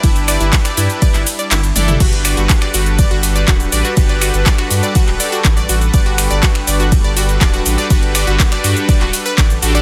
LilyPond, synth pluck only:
\new Staff \with { instrumentName = "Synth pluck" } { \time 4/4 \key g \major \tempo 4 = 122 e'16 r16 d''16 e'16 r16 d''16 e'16 r16 d''16 e'16 r16 d''16 e'16 r16 d''16 e'16 | fis'16 r16 d''16 fis'16 r16 d''16 fis'16 r16 d''16 fis'16 r16 d''16 fis'16 r16 d''16 fis'16 | r16 d''16 fis'16 r16 d''16 fis'16 r16 d''16 fis'16 r16 d''16 fis'16 r16 d''16 fis'16 r16 | d''16 fis'16 r16 d''16 fis'16 r16 d''16 fis'16 r16 d''16 fis'16 r16 d''16 fis'16 r16 d''16 |
fis'16 r16 d''16 fis'16 r16 d''16 fis'16 r16 d''16 fis'16 r16 b'16 d''16 r16 fis'16 d''16 | }